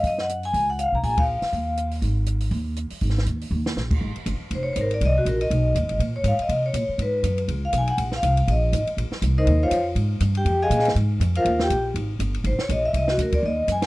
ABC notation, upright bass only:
X:1
M:4/4
L:1/8
Q:"Swing" 1/4=242
K:Ab
V:1 name="Upright bass" clef=bass
_G,,4 D,,3 _C,, | B,,,3 z E,,4 | A,,,4 E,,3 z | A,,,2 E,,2 E,,2 B,,,2 |
A,,, z G,,, z F,,,2 A,,,2 | C,,2 B,,,2 =B,,,2 (3^D,, B,,, =A,,, | B,,2 A,, z C,2 B,, z | A,,2 _G,,2 D,,2 _C,,2 |
B,,,2 C,,2 B,,,2 A,,, z | B,,, z C,,2 E,,2 F,,2 | A,,2 G,,2 F,,2 B,,2 | A,,2 F,,2 E,,2 B,,,2 |
A,,,2 G,,,2 A,,, z B,,,2 | C,,2 =D,,2 E,,2 _G,,2 |]